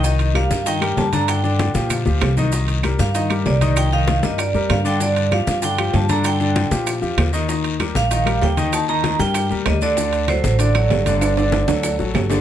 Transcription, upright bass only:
X:1
M:4/4
L:1/8
Q:1/4=193
K:Gm
V:1 name="Upright bass" clef=bass
C,,3 G,,3 G,,2- | G,,3 B,,2 D,, C,,2- | C,,3 G,,3 C,,2- | C,,3 G,,2 F,, G,,2- |
G,,3 G,,3 G,,2- | G,,3 B,,2 F,, E,,2- | E,,3 B,,,3 E,,2- | E,,3 G,,2 E,, D,,2- |
D,,3 A,,,3 G,,,2- | G,,,3 D,,2 A,,, G,,,2 |]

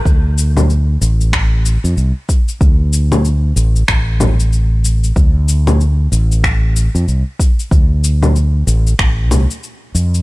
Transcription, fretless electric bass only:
X:1
M:4/4
L:1/16
Q:"Swing 16ths" 1/4=94
K:Dm
V:1 name="Fretless electric bass" clef=bass
D,,6 A,,,4- A,,, F,, C,, z3 | D,,6 A,,, z A,,,8 | D,,6 A,,,4- A,,, F,, C,, z3 | D,,6 A,,, z A,,,2 C,, z3 F,, z |]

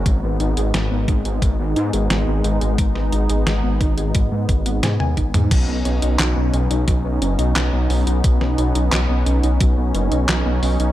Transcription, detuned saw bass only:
X:1
M:4/4
L:1/16
Q:1/4=88
K:B
V:1 name="Detuned saw bass" clef=bass
G,,, G,,, G,,, G,,, G,,, G,,, G,,, G,,, G,,, G,,, G,, G,,, G,,, G,,, G,,, G,,, | G,,, G,,, G,,, G,,, G,,, G,,, G,,, G,,, G,,, G,, G,,, G,,, G,, D,, G,,, G,, | B,,, B,,, B,,, B,,, B,,, B,,, B,,, B,,, B,,, B,,, F,,, B,,, B,,, B,,, B,,, B,,, | B,,, B,,, B,,, B,,, B,,, B,,, B,,, B,,, B,,, B,,, F,,, B,,, B,,, B,,, B,,, B,,, |]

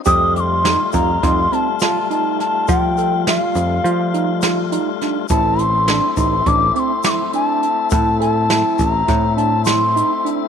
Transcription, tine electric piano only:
X:1
M:9/8
L:1/8
Q:3/8=69
K:Fmix
V:1 name="Tine electric piano"
G2 E F E C F E2 | F A F2 F E F E D | =E2 D _E D C =E D2 | =E A E2 E D E _E D |]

